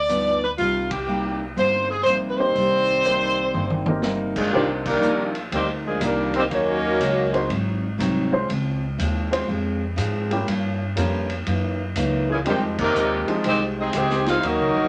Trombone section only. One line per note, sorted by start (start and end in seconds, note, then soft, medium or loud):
2.36 4.02 D#3 medium
2.36 4.03 G3 medium
2.36 4.02 C4 medium
4.36 4.52 G#3 medium
4.52 4.67 A#2 medium
4.52 4.68 D#3 medium
4.52 4.68 G3 medium
4.86 5.32 D#3 medium
4.86 5.32 G3 medium
4.86 5.32 A#3 medium
5.52 5.67 D#3 medium
5.52 5.68 G3 medium
5.52 5.68 C4 medium
5.85 6.01 G#3 medium
6.02 6.35 D#3 medium
6.02 6.34 G3 medium
6.02 6.35 A#3 medium
6.35 6.43 D#3 medium
6.35 6.43 G3 medium
6.35 6.43 C4 medium
6.52 7.47 F#3 medium
6.52 7.47 A#3 medium
6.52 7.47 C#4 medium
12.29 12.37 C#3 medium
12.29 12.37 E3 medium
12.29 12.37 G#3 medium
12.46 12.61 C3 medium
12.46 12.62 D#3 medium
12.46 12.61 G3 medium
12.79 13.25 C3 medium
12.79 13.25 D#3 medium
12.79 13.25 A#3 medium
13.45 13.61 D#3 medium
13.45 13.61 G#3 medium
13.45 13.60 C4 medium
13.79 13.93 G#3 medium
13.79 13.93 C4 medium
13.79 13.94 D#4 medium
13.94 14.26 C4 loud
13.94 14.28 D#4 medium
13.94 14.28 G4 medium
14.27 14.43 G#3 medium
14.27 14.43 C4 medium
14.27 14.43 F4 medium
14.42 14.88 F#3 medium
14.42 14.88 A#3 medium
14.42 14.88 D#4 medium